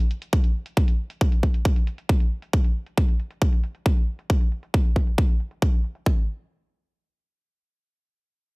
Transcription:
0.11 closed hi-hat medium
0.22 closed hi-hat soft
0.33 kick loud
0.33 closed hi-hat medium
0.44 closed hi-hat soft
0.66 closed hi-hat soft
0.77 kick loud
0.77 closed hi-hat medium
0.88 closed hi-hat medium
1.10 closed hi-hat medium
1.21 kick loud
1.21 closed hi-hat medium
1.32 closed hi-hat soft
1.43 kick medium
1.43 closed hi-hat soft
1.54 closed hi-hat soft
1.65 kick loud
1.65 closed hi-hat medium
1.76 closed hi-hat medium
1.87 closed hi-hat medium
1.98 closed hi-hat soft
2.09 kick loud
2.20 closed hi-hat soft
2.42 closed hi-hat soft
2.53 kick loud
2.64 closed hi-hat medium
2.86 closed hi-hat medium
2.98 kick loud
3.08 closed hi-hat soft
3.20 closed hi-hat soft
3.31 closed hi-hat medium
3.42 kick loud
3.53 closed hi-hat medium
3.64 closed hi-hat medium
3.75 closed hi-hat soft
3.86 kick loud
3.97 closed hi-hat soft
4.19 closed hi-hat soft
4.30 kick loud
4.41 closed hi-hat medium
4.52 closed hi-hat soft
4.63 closed hi-hat medium
4.74 kick loud
4.85 closed hi-hat medium
4.96 kick medium
5.07 closed hi-hat medium
5.18 kick loud
5.29 closed hi-hat medium
5.40 closed hi-hat medium
5.51 closed hi-hat medium
5.62 kick loud
5.73 closed hi-hat soft
5.84 closed hi-hat soft
5.95 closed hi-hat medium
6.06 kick medium

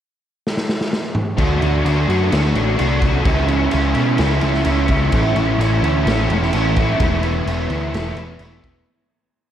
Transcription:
0.47 snare medium
0.57 snare medium
0.69 snare medium
0.81 snare medium
0.93 snare medium
1.15 mid tom medium
1.37 1.58 D2 medium
1.37 1.83 D3 medium
1.37 1.62 A3 medium
1.37 1.60 D4 medium
1.37 1.59 F#4 medium
1.37 kick loud
1.37 crash medium
1.60 1.82 D2 medium
1.60 1.83 A3 medium
1.60 1.85 D4 medium
1.60 1.85 F#4 medium
1.60 crash medium
1.84 2.05 D2 medium
1.84 2.29 D3 medium
1.84 2.10 A3 medium
1.84 2.09 D4 medium
1.84 2.07 F#4 medium
1.84 crash medium
2.08 2.29 F#2 medium
2.08 2.30 A3 medium
2.08 2.31 D4 medium
2.08 2.32 F#4 medium
2.08 crash medium
2.30 2.53 D2 medium
2.30 2.76 D3 medium
2.30 2.56 A3 medium
2.30 2.54 D4 medium
2.30 2.53 F#4 medium
2.30 snare loud
2.30 crash medium
2.54 2.76 A1 medium
2.54 2.77 A3 medium
2.54 2.77 D4 medium
2.54 2.79 F#4 medium
2.54 crash medium
2.77 3.21 C2 medium
2.77 3.23 D3 medium
2.77 3.02 A3 medium
2.77 3.02 D4 medium
2.77 3.00 F#4 medium
2.77 crash medium
3.01 3.24 A3 medium
3.01 3.25 D4 medium
3.01 3.24 F#4 medium
3.01 kick medium
3.01 crash medium
3.24 3.66 C#2 medium
3.24 3.69 C#3 medium
3.24 3.49 G#3 medium
3.24 3.48 C#4 medium
3.24 3.47 E4 medium
3.24 kick loud
3.24 crash medium
3.47 3.70 G#3 medium
3.47 3.71 C#4 medium
3.47 3.72 E4 medium
3.47 crash medium
3.70 3.94 C#2 medium
3.70 4.16 C#3 medium
3.70 3.95 G#3 medium
3.70 3.95 C#4 medium
3.70 3.93 E4 medium
3.70 crash medium
3.94 4.17 B2 medium
3.94 4.17 G#3 medium
3.94 4.18 C#4 medium
3.94 4.19 E4 medium
3.94 crash medium
4.17 4.40 C#2 loud
4.17 4.63 C#3 medium
4.17 4.43 G#3 medium
4.17 4.42 C#4 loud
4.17 4.41 E4 loud
4.17 snare loud
4.17 crash medium
4.41 4.63 C#2 medium
4.41 4.64 G#3 medium
4.41 4.65 C#4 medium
4.41 4.67 E4 medium
4.41 crash medium
4.54 snare soft
4.65 4.87 C#2 medium
4.65 5.11 C#3 medium
4.65 4.91 G#3 medium
4.65 4.89 C#4 medium
4.65 4.88 E4 medium
4.65 crash medium
4.88 5.10 C#2 medium
4.88 5.13 G#3 medium
4.88 5.12 C#4 medium
4.88 5.16 E4 medium
4.88 kick medium
4.88 crash medium
5.12 5.33 A1 medium
5.12 5.60 A2 medium
5.12 5.58 E3 medium
5.12 5.38 A3 medium
5.12 5.36 C#4 medium
5.12 5.35 E4 loud
5.12 kick loud
5.12 crash medium
5.35 5.56 A1 medium
5.35 5.60 A3 medium
5.35 5.60 C#4 medium
5.35 5.61 E4 medium
5.35 crash medium
5.58 5.79 A1 medium
5.58 6.05 E3 medium
5.58 5.84 A3 medium
5.58 5.82 C#4 medium
5.58 5.81 E4 medium
5.58 crash medium
5.81 6.03 D2 medium
5.81 6.06 A3 medium
5.81 6.06 C#4 medium
5.81 6.07 E4 medium
5.81 crash medium
6.04 6.27 A1 medium
6.04 6.52 A2 medium
6.04 6.52 E3 medium
6.04 6.32 A3 medium
6.04 6.30 C#4 loud
6.04 6.29 E4 loud
6.04 snare loud
6.04 crash medium
6.29 6.50 E1 medium
6.29 6.53 A3 medium
6.29 6.53 C#4 medium
6.29 6.55 E4 medium
6.29 crash medium
6.42 snare soft
6.53 6.94 A1 medium
6.53 6.99 E3 medium
6.53 6.77 A3 medium
6.53 6.75 C#4 medium
6.53 6.75 E4 medium
6.53 crash medium
6.75 7.00 A3 medium
6.75 6.99 C#4 medium
6.75 7.02 E4 medium
6.75 kick medium
6.75 crash medium
6.99 7.41 E1 medium
6.99 7.45 E3 medium
6.99 7.25 A3 medium
6.99 7.24 B3 medium
6.99 7.23 E4 medium
6.99 kick loud
6.99 crash medium
7.23 7.46 A3 medium
7.23 7.47 B3 medium
7.23 7.47 E4 medium
7.23 crash medium
7.46 7.67 E1 medium
7.46 7.92 E3 medium
7.46 7.71 A3 medium
7.46 7.70 B3 medium
7.46 7.69 E4 medium
7.46 crash medium
7.69 7.90 D2 medium
7.69 7.93 A3 medium
7.69 7.94 B3 medium
7.69 7.95 E4 medium
7.69 crash medium
7.93 8.13 E1 medium
7.93 8.39 E3 medium
7.93 8.18 A3 medium
7.93 8.17 B3 medium
7.93 8.16 E4 loud
7.93 snare loud
7.93 crash medium
8.15 8.36 E1 medium
8.15 8.41 B3 medium
8.15 8.42 E4 medium
8.15 crash medium
8.20 8.40 A3 medium
8.39 8.60 E1 medium
8.39 8.85 E3 medium
8.39 8.66 A3 medium
8.39 8.65 B3 medium
8.39 crash medium
8.43 8.63 E4 medium
8.64 8.87 A3 medium
8.64 8.87 B3 medium
8.64 8.86 E4 medium
8.64 kick medium
8.64 crash medium

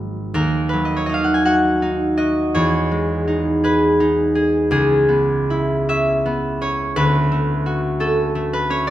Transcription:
0.00 0.35 G#1 medium
0.00 0.34 G#2 medium
0.00 0.72 F#3 medium
0.00 1.76 A#3 medium
0.00 1.08 D#4 medium
0.00 0.36 C5 medium
0.00 0.84 D#5 medium
0.34 2.57 D#2 medium
0.34 2.57 A#4 medium
0.69 0.96 B4 medium
0.73 2.58 F#3 soft
0.85 1.05 D#5 medium
0.96 1.12 C#5 medium
1.06 1.81 D#4 medium
1.06 1.20 D#5 medium
1.14 1.29 F5 medium
1.24 1.42 F#5 medium
1.34 1.53 G#5 medium
1.45 2.17 F#4 medium
1.45 2.57 F#5 medium
1.82 3.26 D#4 medium
2.18 2.58 F#4 medium
2.18 4.73 D#5 medium
2.55 4.74 E2 medium
2.55 4.38 C#5 medium
2.91 6.81 G#3 soft
3.27 3.99 D#4 medium
3.64 4.34 G#4 medium
3.64 6.95 B4 medium
4.00 4.74 D#4 medium
4.35 4.70 G#4 medium
4.71 6.97 C#2 medium
4.71 6.97 G#4 medium
5.08 6.24 B3 soft
5.50 6.98 E4 soft
5.89 6.60 C#4 medium
5.89 6.97 E5 medium
6.26 6.97 B3 medium
6.61 7.99 C#4 soft
6.61 8.69 C#5 medium
6.96 8.90 D2 medium
6.96 8.52 B4 medium
7.32 8.34 A3 soft
7.66 8.90 F#4 soft
8.00 8.69 C#4 medium
8.00 8.90 A4 medium
8.35 8.90 A3 medium
8.53 8.81 B4 medium
8.70 8.90 C#4 medium
8.70 8.90 C#5 medium

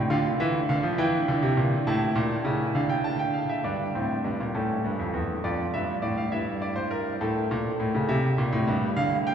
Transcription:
0.10 0.28 D3 medium
0.10 0.96 F4 medium
0.10 0.28 F5 medium
0.40 0.58 E3 medium
0.40 0.58 E5 medium
0.69 0.83 D3 medium
0.69 0.87 F5 medium
0.83 0.97 F3 medium
0.98 1.16 E3 medium
0.98 1.83 E4 medium
0.98 1.84 G5 medium
1.28 1.42 D3 medium
1.42 1.56 C3 medium
1.57 1.75 A#2 medium
1.87 2.05 A2 medium
1.87 3.61 E4 medium
1.87 2.73 A5 medium
2.16 2.34 A#2 medium
2.44 2.63 C#3 medium
2.75 3.62 D3 medium
2.75 2.89 F5 medium
2.89 3.04 G5 medium
3.04 3.19 A5 medium
3.19 3.34 G5 medium
3.34 3.49 F5 medium
3.49 3.64 E5 medium
3.64 3.83 G2 medium
3.64 3.83 D4 medium
3.64 4.51 D5 medium
3.95 4.13 A2 medium
3.95 4.13 C4 medium
4.24 4.39 G2 medium
4.24 4.43 D4 medium
4.40 4.54 A#2 medium
4.55 4.73 A2 medium
4.55 5.42 C#4 soft
4.55 5.42 A4 medium
4.84 4.99 G2 medium
4.99 5.14 F2 medium
5.13 5.32 E2 medium
5.44 5.62 F2 medium
5.44 6.30 F4 medium
5.44 5.62 D5 medium
5.74 5.92 G2 medium
5.74 5.92 E5 medium
6.02 6.21 A2 medium
6.02 6.17 D5 medium
6.17 6.32 F5 medium
6.32 7.18 G2 medium
6.32 7.18 E4 medium
6.32 6.50 E5 medium
6.62 6.76 D5 medium
6.76 6.91 C5 medium
6.91 7.09 A#4 medium
7.21 7.39 A2 medium
7.21 8.07 A4 medium
7.51 7.69 A#2 medium
7.80 7.94 A2 medium
7.94 8.09 C#3 medium
8.09 8.27 C3 medium
8.09 8.94 E5 medium
8.38 8.53 A#2 medium
8.52 8.67 A2 medium
8.67 8.86 G2 medium
8.96 9.35 D3 medium
8.96 9.15 F5 medium
9.27 9.35 G5 medium

